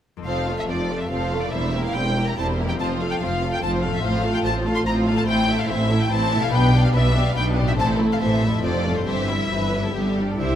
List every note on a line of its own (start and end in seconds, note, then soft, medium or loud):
0.17 1.54 F2 soft
0.17 1.39 C4 soft
0.17 1.51 A4 soft
0.22 0.63 F1 soft
0.22 1.48 C5 soft
0.27 0.64 F2 soft
0.27 0.46 F3 soft
0.27 0.46 C4 soft
0.27 0.45 A4 soft
0.27 0.46 C5 soft
0.27 0.56 F5 medium
0.46 0.69 A3 soft
0.46 0.68 F4 soft
0.46 0.68 A4 soft
0.59 0.63 E5 soft
0.68 1.06 F1 soft
0.68 1.06 F2 soft
0.68 0.89 F3 soft
0.68 0.89 C4 soft
0.68 0.88 A4 soft
0.68 0.89 C5 soft
0.68 1.00 D5 soft
0.89 1.11 A3 soft
0.89 1.11 F4 soft
0.89 1.10 A4 soft
1.00 1.11 E5 soft
1.10 1.48 F1 soft
1.10 1.48 F2 soft
1.10 1.31 F3 soft
1.10 1.30 C4 soft
1.10 1.31 A4 soft
1.10 1.31 C5 soft
1.10 1.42 F5 medium
1.31 1.53 A3 soft
1.31 1.54 F4 soft
1.31 1.54 A4 soft
1.36 2.72 E2 soft
1.40 2.66 C4 soft
1.40 1.53 D5 soft
1.45 2.77 A#4 soft
1.49 1.73 G3 soft
1.49 1.72 C4 soft
1.49 2.75 C5 soft
1.49 1.84 E5 soft
1.53 1.91 E1 soft
1.53 1.91 E2 soft
1.53 1.73 E4 soft
1.53 1.74 C5 soft
1.74 1.95 A#3 soft
1.74 1.95 E4 soft
1.74 1.95 G4 soft
1.74 1.96 A#4 soft
1.85 1.95 F5 medium
1.95 2.33 E1 soft
1.95 2.33 E2 soft
1.95 2.16 G3 soft
1.95 2.16 C4 soft
1.95 2.17 E4 soft
1.95 2.17 C5 soft
1.95 2.27 G5 medium
2.17 2.38 A#3 soft
2.17 2.38 E4 soft
2.17 2.38 G4 soft
2.17 2.38 A#4 soft
2.28 2.38 A#5 soft
2.37 2.75 E1 soft
2.37 2.75 E2 soft
2.37 2.57 G3 soft
2.37 2.57 C4 soft
2.37 2.57 E4 soft
2.37 2.57 C5 soft
2.37 2.46 A5 medium
2.59 3.97 F2 soft
2.59 2.80 A#3 soft
2.59 2.80 E4 soft
2.59 2.80 G4 soft
2.59 2.80 A#4 soft
2.67 3.89 C4 soft
2.67 2.73 G5 soft
2.71 3.93 A4 soft
2.76 3.16 F1 soft
2.76 2.99 C4 soft
2.76 2.99 F4 soft
2.76 3.98 C5 soft
2.80 3.17 F2 soft
2.80 2.99 F3 soft
2.80 2.99 C5 soft
2.80 2.88 A5 medium
3.00 3.21 A3 soft
3.00 3.21 F4 soft
3.00 3.21 A4 soft
3.00 3.21 F5 soft
3.11 3.15 G5 medium
3.21 3.58 F1 soft
3.21 3.58 F2 soft
3.21 3.42 F3 soft
3.21 3.42 C4 soft
3.21 3.42 F4 soft
3.21 3.42 C5 soft
3.21 3.52 F5 medium
3.42 3.63 A3 soft
3.42 3.63 F4 soft
3.42 3.63 A4 soft
3.42 3.63 F5 soft
3.52 3.62 G5 medium
3.62 3.99 F1 soft
3.62 3.99 F2 soft
3.62 3.82 F3 soft
3.62 3.82 C4 soft
3.62 3.82 F4 soft
3.62 3.82 C5 soft
3.62 3.70 A5 medium
3.82 5.10 A2 soft
3.82 4.03 A3 soft
3.82 4.03 F4 soft
3.82 4.03 A4 soft
3.82 4.03 F5 soft
3.90 6.48 C4 soft
3.90 4.04 E5 medium
3.94 5.19 A4 soft
3.99 4.23 F4 soft
3.99 5.23 C5 soft
3.99 4.22 C5 soft
3.99 4.34 F5 medium
4.03 4.40 A1 medium
4.03 4.40 A2 soft
4.03 4.23 F3 soft
4.03 4.23 C4 soft
4.24 4.45 A3 soft
4.24 4.45 F4 soft
4.24 4.45 A4 soft
4.24 4.45 F5 soft
4.34 4.38 G5 medium
4.43 4.82 A1 medium
4.43 4.82 A2 soft
4.43 4.66 F3 soft
4.43 4.66 C4 soft
4.43 4.65 F4 soft
4.43 4.65 C5 soft
4.43 4.53 A5 medium
4.65 4.87 A3 soft
4.65 4.87 F4 soft
4.65 4.86 A4 soft
4.65 4.86 F5 soft
4.75 4.80 C6 medium
4.86 5.24 A1 medium
4.86 5.23 A2 soft
4.86 5.06 F3 soft
4.86 5.06 C4 soft
4.86 5.06 F4 soft
4.86 5.06 C5 soft
4.86 4.94 A#5 medium
5.06 5.29 A3 soft
5.06 5.29 F4 soft
5.06 5.28 A4 soft
5.06 5.28 F5 soft
5.11 6.46 A2 soft
5.16 6.49 E4 soft
5.16 5.21 A5 medium
5.20 6.51 A4 soft
5.24 5.65 A1 medium
5.24 5.64 A2 medium
5.24 5.46 E4 soft
5.24 6.53 C5 soft
5.24 5.46 C5 soft
5.24 5.59 G5 medium
5.29 5.48 E3 soft
5.29 5.48 C4 soft
5.47 5.70 A3 soft
5.47 5.70 E4 soft
5.47 5.69 A4 soft
5.47 5.69 E5 soft
5.59 5.69 F5 soft
5.68 6.06 A1 medium
5.68 6.06 A2 medium
5.68 5.91 E3 soft
5.68 5.91 C4 soft
5.68 5.90 E4 soft
5.68 5.90 C5 soft
5.68 6.00 E5 medium
5.89 6.12 A3 soft
5.89 6.12 E4 soft
5.89 6.11 A4 soft
5.89 6.11 E5 soft
6.00 6.11 G5 medium
6.09 6.48 A1 medium
6.09 6.48 A2 medium
6.09 6.30 E4 soft
6.09 6.30 C5 soft
6.09 6.43 A5 medium
6.13 6.32 E3 soft
6.13 6.32 C4 medium
6.31 6.54 A3 soft
6.31 6.54 E4 soft
6.31 6.53 A4 soft
6.31 6.53 E5 soft
6.36 7.72 B2 soft
6.40 7.75 D4 soft
6.40 6.53 F5 medium
6.44 7.77 G4 soft
6.49 6.90 B1 medium
6.49 6.90 B2 medium
6.49 6.72 B4 medium
6.49 7.79 D5 soft
6.49 6.85 G5 medium
6.54 6.73 B3 medium
6.54 6.73 D4 soft
6.73 6.95 B3 soft
6.73 6.94 D4 soft
6.73 6.95 G4 soft
6.73 6.94 D5 soft
6.85 6.89 F5 medium
6.94 7.32 B1 medium
6.94 7.32 B2 medium
6.94 7.16 B3 soft
6.94 7.16 D4 soft
6.94 7.16 B4 soft
6.94 7.25 E5 medium
7.14 7.36 B3 soft
7.14 7.36 D4 soft
7.14 7.36 G4 soft
7.14 7.36 D5 soft
7.27 7.37 F5 medium
7.35 7.74 B1 medium
7.35 7.74 B2 medium
7.35 7.57 B3 soft
7.35 7.57 D4 medium
7.35 7.56 B4 soft
7.35 7.45 G5 medium
7.56 7.79 B3 soft
7.56 7.79 D4 soft
7.56 7.79 G4 soft
7.56 7.79 D5 soft
7.61 8.57 A2 soft
7.66 8.49 C4 soft
7.66 7.73 E5 medium
7.70 8.61 E4 soft
7.75 8.16 A2 medium
7.75 8.58 A4 soft
7.75 7.97 A4 medium
7.75 7.98 C5 medium
7.79 8.17 A1 medium
7.79 7.99 E3 medium
7.79 7.99 C4 medium
7.79 7.88 A5 medium
7.98 8.22 A3 soft
7.98 8.20 E4 soft
7.98 8.18 A4 soft
8.12 8.16 F5 medium
8.19 8.60 A1 medium
8.19 8.59 A2 medium
8.19 8.43 E3 soft
8.19 8.43 C4 soft
8.19 8.42 A4 soft
8.19 8.42 C5 soft
8.19 8.64 E5 medium
8.42 8.64 A3 soft
8.42 8.64 E4 soft
8.42 8.62 A4 soft
8.46 9.00 F2 soft
8.51 8.93 C4 soft
8.55 9.05 F4 soft
8.59 8.84 F3 soft
8.59 8.84 C4 soft
8.59 9.07 A4 soft
8.59 8.82 A4 soft
8.59 8.84 C5 soft
8.64 9.03 F1 medium
8.64 9.02 F2 medium
8.64 8.96 D5 medium
8.84 9.07 A3 soft
8.84 9.07 F4 soft
8.84 9.06 A4 soft
8.89 9.76 G2 soft
8.94 9.90 C4 soft
8.94 9.08 C5 soft
8.99 9.92 E4 soft
9.03 9.28 C4 soft
9.03 9.90 G4 soft
9.03 9.27 G4 soft
9.03 9.27 C5 soft
9.03 10.17 E5 medium
9.08 9.46 G1 soft
9.08 9.46 G2 soft
9.08 9.28 E3 soft
9.28 9.51 G3 soft
9.28 9.50 E4 soft
9.28 9.51 E4 soft
9.28 9.50 E5 soft
9.50 9.90 G1 soft
9.50 9.89 G2 soft
9.50 9.73 E3 soft
9.50 9.73 C4 soft
9.50 9.81 B4 soft
9.73 9.95 G3 soft
9.73 9.95 E4 soft
9.78 10.33 G2 soft
9.82 10.35 B3 soft
9.82 9.95 A4 soft
9.87 10.38 D4 soft
9.91 10.35 G1 soft
9.91 10.35 G2 soft
9.91 10.16 D3 soft
9.91 10.37 G3 medium
9.91 10.16 B3 soft
9.91 10.55 G4 soft
9.95 10.28 G4 soft
10.18 10.40 G3 soft
10.18 10.40 D4 soft
10.30 10.41 A4 soft
10.39 10.55 C2 soft
10.39 10.55 C3 soft
10.39 10.55 E4 medium
10.39 10.55 G4 soft
10.39 10.55 C5 soft
10.39 10.55 E5 soft